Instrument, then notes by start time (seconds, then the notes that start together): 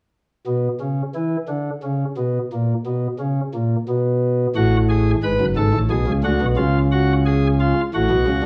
pipe organ
0.47 B2
0.80 C#3
1.15 E3
1.48 D3
1.83 C#3
2.17 B2
2.53 A#2
2.86 B2
3.20 C#3
3.54 A#2
3.89 B2
4.56 A1 A2 F#4
4.89 G#4
5.23 G#1 G#2 B4
5.40 F#1 F#2
5.56 G#1 G#2 A4
5.73 A1 A2
5.90 B1 B2 G#4
6.07 C#2 C#3
6.24 D2 D3 F#4
6.41 B1 B2
6.57 C#2 C#3 F4
6.92 F#4
7.26 G#4
7.60 F4
7.94 A1 A2 F#4
8.10 B1 B2
8.27 C#2 C#3